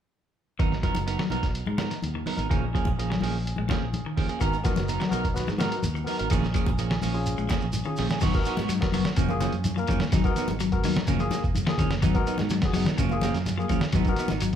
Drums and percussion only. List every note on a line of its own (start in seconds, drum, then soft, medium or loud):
0.60 kick medium
0.60 closed hi-hat medium
0.72 snare soft
0.83 kick medium
0.83 closed hi-hat soft
0.95 closed hi-hat soft
0.95 high conga medium
1.08 closed hi-hat medium
1.19 snare medium
1.30 closed hi-hat soft
1.30 high conga medium
1.43 kick medium
1.43 snare soft
1.43 closed hi-hat soft
1.55 closed hi-hat medium
1.66 high conga medium
1.78 snare medium
1.78 closed hi-hat soft
1.78 high conga medium
1.91 snare soft
1.91 closed hi-hat medium
2.02 closed hi-hat medium
2.02 high conga medium
2.26 open hi-hat medium
2.26 high conga medium
2.37 closed hi-hat soft
2.37 high conga medium
2.51 kick medium
2.51 closed hi-hat medium
2.75 kick medium
2.75 closed hi-hat soft
2.85 kick medium
2.85 high conga medium
2.99 closed hi-hat medium
3.12 snare soft
3.21 open hi-hat medium
3.21 high conga medium
3.47 closed hi-hat medium
3.56 high conga medium
3.69 kick medium
3.69 snare medium
3.69 closed hi-hat soft
3.69 high conga medium
3.93 closed hi-hat soft
3.93 high conga medium
4.17 kick medium
4.17 open hi-hat soft
4.29 closed hi-hat soft
4.41 kick medium
4.41 closed hi-hat medium
4.41 shekere medium
4.53 shekere soft
4.65 kick medium
4.65 snare soft
4.65 closed hi-hat soft
4.65 shekere medium
4.76 snare soft
4.76 closed hi-hat soft
4.76 high conga medium
4.76 shekere soft
4.88 closed hi-hat medium
4.88 shekere medium
5.00 snare medium
5.00 shekere soft
5.12 closed hi-hat medium
5.12 high conga medium
5.12 shekere medium
5.24 kick medium
5.24 closed hi-hat soft
5.24 shekere soft
5.36 snare soft
5.36 closed hi-hat medium
5.36 shekere medium
5.47 snare soft
5.47 high conga medium
5.47 shekere soft
5.58 snare medium
5.58 closed hi-hat medium
5.58 high conga medium
5.58 shekere medium
5.71 closed hi-hat medium
5.71 shekere soft
5.83 closed hi-hat medium
5.83 high conga medium
5.83 shekere medium
5.96 shekere soft
6.07 open hi-hat medium
6.07 shekere medium
6.19 closed hi-hat medium
6.19 shekere soft
6.30 kick medium
6.30 closed hi-hat medium
6.30 shekere medium
6.42 snare soft
6.42 high conga medium
6.42 shekere soft
6.54 kick medium
6.54 closed hi-hat soft
6.54 shekere medium
6.66 kick medium
6.66 high conga medium
6.66 shekere soft
6.78 closed hi-hat medium
6.78 shekere medium
6.91 snare medium
6.91 shekere soft
7.02 open hi-hat medium
7.02 high conga medium
7.02 shekere medium
7.14 shekere soft
7.26 closed hi-hat medium
7.26 shekere medium
7.38 shekere soft
7.49 kick medium
7.49 snare medium
7.49 closed hi-hat soft
7.49 high conga medium
7.49 shekere medium
7.61 shekere soft
7.73 closed hi-hat medium
7.73 high conga medium
7.73 shekere medium
7.84 shekere soft
7.97 snare soft
7.97 open hi-hat medium
7.97 shekere medium
8.09 snare medium
8.09 closed hi-hat soft
8.09 high conga medium
8.09 shekere soft
8.20 kick loud
8.20 closed hi-hat medium
8.20 crash medium
8.20 low conga medium
8.20 shekere medium
8.33 kick medium
8.33 closed hi-hat soft
8.33 shekere soft
8.45 closed hi-hat soft
8.45 shekere medium
8.57 closed hi-hat soft
8.57 high conga medium
8.57 shekere soft
8.69 closed hi-hat medium
8.69 shekere medium
8.82 kick medium
8.82 snare medium
8.82 closed hi-hat soft
8.82 shekere soft
8.92 open hi-hat medium
8.92 high conga medium
8.92 shekere medium
9.05 snare medium
9.05 closed hi-hat soft
9.05 shekere soft
9.16 kick medium
9.16 closed hi-hat medium
9.16 shekere medium
9.29 high conga medium
9.29 shekere soft
9.41 snare soft
9.41 closed hi-hat medium
9.41 high conga medium
9.41 shekere medium
9.52 closed hi-hat soft
9.52 shekere soft
9.64 closed hi-hat medium
9.64 high conga medium
9.64 shekere loud
9.78 shekere soft
9.87 kick medium
9.87 closed hi-hat medium
9.87 low conga medium
9.87 shekere medium
10.00 snare medium
10.00 closed hi-hat soft
10.00 high conga medium
10.00 shekere soft
10.12 kick loud
10.12 snare soft
10.12 closed hi-hat medium
10.12 low conga medium
10.12 shekere medium
10.24 kick medium
10.24 closed hi-hat soft
10.24 shekere soft
10.36 snare soft
10.36 closed hi-hat medium
10.36 shekere medium
10.48 closed hi-hat soft
10.48 high conga medium
10.48 shekere soft
10.60 closed hi-hat medium
10.60 shekere medium
10.72 kick medium
10.72 closed hi-hat soft
10.72 shekere soft
10.84 open hi-hat medium
10.84 high conga medium
10.84 shekere medium
10.96 snare medium
10.96 low conga medium
10.96 shekere soft
11.07 kick medium
11.07 closed hi-hat medium
11.07 shekere medium
11.19 closed hi-hat soft
11.19 high conga medium
11.19 shekere soft
11.31 snare soft
11.31 closed hi-hat soft
11.31 high conga medium
11.31 shekere medium
11.44 kick medium
11.44 shekere soft
11.55 closed hi-hat medium
11.55 high conga medium
11.55 shekere medium
11.67 snare medium
11.67 shekere soft
11.78 kick medium
11.78 closed hi-hat soft
11.78 low conga medium
11.78 shekere medium
11.91 snare medium
11.91 closed hi-hat soft
11.91 shekere soft
12.02 kick loud
12.02 closed hi-hat medium
12.02 low conga medium
12.02 shekere medium
12.14 kick medium
12.14 closed hi-hat soft
12.14 high conga medium
12.14 shekere soft
12.27 closed hi-hat medium
12.27 shekere medium
12.38 snare soft
12.38 closed hi-hat soft
12.38 high conga medium
12.38 shekere soft
12.50 snare soft
12.50 closed hi-hat medium
12.50 shekere medium
12.62 kick medium
12.62 snare medium
12.62 closed hi-hat soft
12.62 shekere soft
12.73 open hi-hat medium
12.73 high conga medium
12.73 shekere medium
12.85 snare medium
12.85 closed hi-hat soft
12.85 low conga medium
12.85 shekere soft
12.98 kick medium
12.98 closed hi-hat medium
12.98 shekere medium
13.10 high conga medium
13.10 shekere soft
13.21 snare soft
13.21 closed hi-hat medium
13.21 high conga loud
13.21 shekere medium
13.34 snare soft
13.34 closed hi-hat soft
13.34 shekere soft
13.46 snare soft
13.46 closed hi-hat medium
13.46 high conga medium
13.46 shekere medium
13.60 shekere soft
13.69 kick medium
13.69 closed hi-hat medium
13.69 high conga medium
13.69 low conga medium
13.69 shekere medium
13.81 snare medium
13.81 closed hi-hat soft
13.81 shekere soft
13.92 kick medium
13.92 closed hi-hat medium
13.92 low conga medium
13.92 shekere medium
14.05 kick medium
14.05 closed hi-hat soft
14.05 high conga medium
14.05 shekere soft
14.16 snare soft
14.16 closed hi-hat medium
14.16 shekere medium
14.28 snare soft
14.28 closed hi-hat soft
14.28 high conga medium
14.28 shekere soft
14.40 closed hi-hat medium
14.40 shekere medium